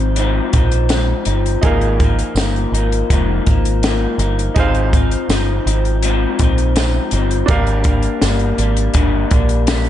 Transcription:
Already playing: picked electric bass G#1, clean electric guitar F3 C4 D#4, upright piano D#4 G#4 C5 F5
0.16 clean electric guitar G#2 F3 C4 D#4, closed hi-hat
0.52 picked electric bass A#1, clean electric guitar F3 C4 D#4, kick, closed hi-hat
0.72 closed hi-hat
0.89 clean electric guitar G#2 F3 C4, snare, closed hi-hat, tambourine
0.94 clean electric guitar D#4
1.25 picked electric bass G1, clean electric guitar C4 D#4, closed hi-hat
1.31 clean electric guitar F3
1.46 closed hi-hat
1.61 picked electric bass G#1, clean electric guitar G#2 F3 A#3, upright piano D#4 G#4 A#4, kick, closed hi-hat
1.66 clean electric guitar D#4, upright piano F5
1.81 closed hi-hat
2.00 clean electric guitar A#3 D#4, kick, closed hi-hat
2.05 clean electric guitar F3
2.19 closed hi-hat
2.35 picked electric bass G1, clean electric guitar F3, snare, closed hi-hat, tambourine
2.39 clean electric guitar A#3 D#4
2.56 closed hi-hat
2.72 picked electric bass G#1, clean electric guitar A#3 D#4, closed hi-hat
2.78 clean electric guitar F3
2.92 closed hi-hat
3.10 picked electric bass F1, clean electric guitar G#2 F3 A#3 D#4, kick, closed hi-hat
3.47 picked electric bass G#1, clean electric guitar F3 A#3 D#4, kick, closed hi-hat
3.65 closed hi-hat
3.83 clean electric guitar G#2 F3 A#3, snare, closed hi-hat, tambourine
3.87 clean electric guitar D#4
4.18 picked electric bass G1, clean electric guitar A#3 D#4, closed hi-hat
4.24 clean electric guitar F3
4.39 closed hi-hat
4.55 picked electric bass G#1, clean electric guitar G#2 F3 C4, upright piano D#4 G#4 C5, kick, closed hi-hat
4.59 clean electric guitar D#4, upright piano F5
4.75 closed hi-hat
4.93 clean electric guitar C4 D#4, kick, closed hi-hat
4.97 clean electric guitar F3
5.11 closed hi-hat
5.29 picked electric bass G1, clean electric guitar F3 C4, snare, closed hi-hat, tambourine
5.33 clean electric guitar D#4
5.66 picked electric bass G#1, clean electric guitar C4 D#4, closed hi-hat
5.70 clean electric guitar F3
5.85 closed hi-hat
6.03 clean electric guitar G#2 F3 C4 D#4, closed hi-hat
6.39 picked electric bass A#1, clean electric guitar C4 D#4, kick, closed hi-hat
6.44 clean electric guitar F3
6.58 closed hi-hat
6.76 clean electric guitar G#2 F3 C4, snare, closed hi-hat, tambourine
6.80 clean electric guitar D#4
7.11 picked electric bass G1, clean electric guitar C4 D#4, closed hi-hat
7.17 clean electric guitar F3
7.31 closed hi-hat
7.46 picked electric bass G#1, clean electric guitar G2, upright piano D4 G4 A#4, kick, closed hi-hat
7.51 clean electric guitar D3 G3 A#3 D4, upright piano F5
7.67 closed hi-hat
7.84 clean electric guitar A#3 D4, kick, closed hi-hat
7.89 clean electric guitar G3
8.02 closed hi-hat
8.22 picked electric bass G1, clean electric guitar D3 G3 A#3, snare, closed hi-hat, tambourine
8.26 clean electric guitar D4
8.39 closed hi-hat
8.58 picked electric bass G#1, clean electric guitar A#3 D4, closed hi-hat
8.63 clean electric guitar G3
8.77 closed hi-hat
8.94 picked electric bass G1, clean electric guitar G2 D3 G3 A#3 D4, kick, closed hi-hat
9.30 picked electric bass A#1, clean electric guitar G3 A#3 D4, kick, closed hi-hat
9.49 closed hi-hat
9.67 clean electric guitar D3 G3 A#3, snare, closed hi-hat, tambourine
9.71 clean electric guitar D4
9.84 closed hi-hat

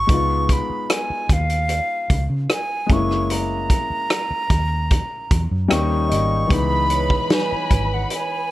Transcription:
Already playing: flute C#6
0.07 fingered electric bass C#2, grand piano G#3 B3 D#4, kick, closed hi-hat
0.12 grand piano F4
0.49 flute B5, kick, closed hi-hat
0.70 muted fingered electric bass stroke
0.90 flute G#5, cross-stick, closed hi-hat
1.10 muted fingered electric bass stroke
1.29 fingered electric bass D#2, flute F5, kick, closed hi-hat
1.50 closed hi-hat
1.69 closed hi-hat
2.10 fingered electric bass C#2, kick, closed hi-hat
2.30 fingered electric bass C#3
2.50 flute G#5, cross-stick, closed hi-hat
2.87 fingered electric bass F#1, grand piano G#3 A3 C#4, kick, closed hi-hat
2.92 grand piano A#3 E4, flute C#6
3.11 cross-stick
3.30 flute A#5, closed hi-hat
3.70 kick, closed hi-hat
3.90 muted fingered electric bass stroke
4.10 cross-stick, closed hi-hat
4.31 muted fingered electric bass stroke
4.50 fingered electric bass D#2, kick, closed hi-hat
4.91 kick, closed hi-hat
5.31 fingered electric bass E2, kick, closed hi-hat
5.51 fingered electric bass F#2
5.68 fingered electric bass D#2, grand piano G3 A#3 C#4 D#4 G5, flute C#6, cross-stick, closed hi-hat
6.09 fingered electric bass G#1, grand piano D#5, closed hi-hat
6.47 fingered electric bass C#2, grand piano E3 G#3 B3, string section B4 B5, kick, closed hi-hat
6.52 grand piano D#4, flute B5
6.90 vibraphone C#5, closed hi-hat
7.10 kick
7.30 flute G#5, snare, closed hi-hat
7.52 muted fingered electric bass stroke
7.70 fingered electric bass G#1, kick, closed hi-hat
7.94 flute F#5
8.10 flute G#5, closed hi-hat

